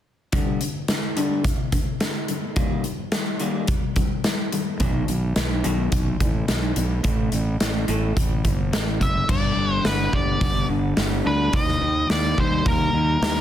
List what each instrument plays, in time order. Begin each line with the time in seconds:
0.32 clean electric guitar G2 D3 G3, kick, closed hi-hat
0.61 clean electric guitar G2 D3, closed hi-hat
0.88 clean electric guitar G2 D3, snare, closed hi-hat
1.16 clean electric guitar G2 D3 G3, closed hi-hat
1.44 clean electric guitar G2 D3, kick, closed hi-hat
1.72 clean electric guitar G2 D3, kick, closed hi-hat
2.00 clean electric guitar G2 D3, snare, closed hi-hat
2.28 clean electric guitar G2 D3, closed hi-hat
2.56 clean electric guitar D#3 G3 A#3, kick, closed hi-hat
2.84 clean electric guitar D#3 G3, closed hi-hat
3.12 clean electric guitar D#3 G3, snare, closed hi-hat
3.40 clean electric guitar D#3 G3 A#3, closed hi-hat
3.67 clean electric guitar D#3 G3, kick, closed hi-hat
3.96 clean electric guitar D#3 G3, kick, closed hi-hat
4.24 clean electric guitar D#3 G3, snare, closed hi-hat
4.53 clean electric guitar D#3 G3, closed hi-hat
4.80 fingered electric bass B1, clean electric guitar B2 D#3 F#3, kick, closed hi-hat
5.08 fingered electric bass B1, clean electric guitar B2 D#3, closed hi-hat
5.36 fingered electric bass B1, clean electric guitar B2 D#3, snare, closed hi-hat
5.64 fingered electric bass B1, clean electric guitar B2 D#3 F#3, closed hi-hat
5.92 fingered electric bass B1, clean electric guitar B2 D#3, kick, closed hi-hat
6.20 fingered electric bass A1, clean electric guitar B2 D#3, kick, closed hi-hat
6.48 fingered electric bass B1, clean electric guitar B2 D#3, snare, closed hi-hat
6.76 fingered electric bass B1, clean electric guitar B2 D#3, closed hi-hat
7.03 fingered electric bass A1, clean electric guitar A2 E3 A3, kick, closed hi-hat
7.32 fingered electric bass A1, clean electric guitar A2 E3, closed hi-hat
7.60 fingered electric bass A1, clean electric guitar A2 E3, snare, closed hi-hat
7.88 fingered electric bass A1, clean electric guitar A2 E3 A3, closed hi-hat
8.16 fingered electric bass A1, clean electric guitar A2 E3, kick, closed hi-hat
8.44 fingered electric bass G1, clean electric guitar A2 E3, kick, closed hi-hat
8.72 fingered electric bass A1, clean electric guitar A2 E3, snare, closed hi-hat
9.00 fingered electric bass F#1, clean electric guitar A2 E3, lead electric guitar E5, kick, closed hi-hat
9.29 fingered electric bass G1, clean electric guitar G2, lead electric guitar D5, kick, crash
9.57 fingered electric bass G1, clean electric guitar D3
9.75 lead electric guitar C5
9.85 fingered electric bass G1, clean electric guitar B3, lead electric guitar B4, snare, open hi-hat
10.13 fingered electric bass G1, clean electric guitar G3, lead electric guitar D5, kick
10.41 fingered electric bass G1, clean electric guitar B3, kick, open hi-hat
10.69 fingered electric bass G1, clean electric guitar D3
10.97 fingered electric bass G1, clean electric guitar G3, snare, open hi-hat
11.25 fingered electric bass D2, clean electric guitar D4, lead electric guitar B4
11.53 fingered electric bass D#2, clean electric guitar D#3, lead electric guitar D#5, kick, open hi-hat
11.68 snare
11.81 fingered electric bass D#2, clean electric guitar D#3
12.10 fingered electric bass D#2, clean electric guitar A#3, lead electric guitar D5, snare, open hi-hat
12.38 fingered electric bass D#2, clean electric guitar G3, lead electric guitar C5, kick
12.66 fingered electric bass D#2, clean electric guitar A#3, lead electric guitar A#4, kick, open hi-hat
12.93 fingered electric bass D#2, clean electric guitar D#3
13.22 fingered electric bass D#2, clean electric guitar G3, snare, open hi-hat